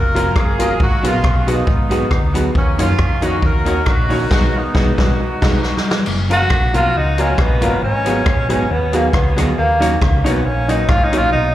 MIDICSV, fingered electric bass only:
0, 0, Header, 1, 2, 480
1, 0, Start_track
1, 0, Tempo, 438917
1, 872, Time_signature, 4, 2, 24, 8
1, 12628, End_track
2, 0, Start_track
2, 0, Title_t, "Fingered electric bass"
2, 0, Program_c, 0, 33
2, 0, Note_on_c, 0, 29, 97
2, 320, Note_off_c, 0, 29, 0
2, 393, Note_on_c, 0, 31, 85
2, 801, Note_off_c, 0, 31, 0
2, 877, Note_on_c, 0, 32, 104
2, 1094, Note_off_c, 0, 32, 0
2, 1136, Note_on_c, 0, 34, 90
2, 1322, Note_off_c, 0, 34, 0
2, 1356, Note_on_c, 0, 35, 86
2, 1763, Note_off_c, 0, 35, 0
2, 1829, Note_on_c, 0, 32, 89
2, 2238, Note_off_c, 0, 32, 0
2, 2307, Note_on_c, 0, 38, 97
2, 2718, Note_off_c, 0, 38, 0
2, 2795, Note_on_c, 0, 39, 94
2, 3013, Note_off_c, 0, 39, 0
2, 3059, Note_on_c, 0, 42, 92
2, 3244, Note_off_c, 0, 42, 0
2, 3272, Note_on_c, 0, 41, 90
2, 3681, Note_off_c, 0, 41, 0
2, 3751, Note_on_c, 0, 39, 90
2, 4160, Note_off_c, 0, 39, 0
2, 4229, Note_on_c, 0, 34, 82
2, 4639, Note_off_c, 0, 34, 0
2, 4715, Note_on_c, 0, 35, 97
2, 4890, Note_off_c, 0, 35, 0
2, 5193, Note_on_c, 0, 35, 94
2, 5368, Note_off_c, 0, 35, 0
2, 5452, Note_on_c, 0, 35, 93
2, 5603, Note_off_c, 0, 35, 0
2, 5930, Note_on_c, 0, 35, 102
2, 6081, Note_off_c, 0, 35, 0
2, 6639, Note_on_c, 0, 30, 105
2, 7044, Note_off_c, 0, 30, 0
2, 7112, Note_on_c, 0, 34, 90
2, 7331, Note_off_c, 0, 34, 0
2, 7372, Note_on_c, 0, 35, 92
2, 7560, Note_off_c, 0, 35, 0
2, 7599, Note_on_c, 0, 37, 94
2, 8004, Note_off_c, 0, 37, 0
2, 8070, Note_on_c, 0, 34, 92
2, 8290, Note_off_c, 0, 34, 0
2, 8330, Note_on_c, 0, 31, 86
2, 8519, Note_off_c, 0, 31, 0
2, 8555, Note_on_c, 0, 32, 95
2, 8961, Note_off_c, 0, 32, 0
2, 9037, Note_on_c, 0, 34, 96
2, 9253, Note_off_c, 0, 34, 0
2, 9294, Note_on_c, 0, 32, 88
2, 9481, Note_off_c, 0, 32, 0
2, 9514, Note_on_c, 0, 39, 96
2, 9920, Note_off_c, 0, 39, 0
2, 9989, Note_on_c, 0, 37, 94
2, 10209, Note_off_c, 0, 37, 0
2, 10258, Note_on_c, 0, 38, 88
2, 10443, Note_off_c, 0, 38, 0
2, 10476, Note_on_c, 0, 39, 104
2, 10881, Note_off_c, 0, 39, 0
2, 10957, Note_on_c, 0, 37, 98
2, 11173, Note_off_c, 0, 37, 0
2, 11224, Note_on_c, 0, 35, 95
2, 11405, Note_off_c, 0, 35, 0
2, 11440, Note_on_c, 0, 34, 90
2, 11843, Note_off_c, 0, 34, 0
2, 11907, Note_on_c, 0, 32, 94
2, 12165, Note_off_c, 0, 32, 0
2, 12165, Note_on_c, 0, 34, 86
2, 12354, Note_off_c, 0, 34, 0
2, 12396, Note_on_c, 0, 35, 98
2, 12628, Note_off_c, 0, 35, 0
2, 12628, End_track
0, 0, End_of_file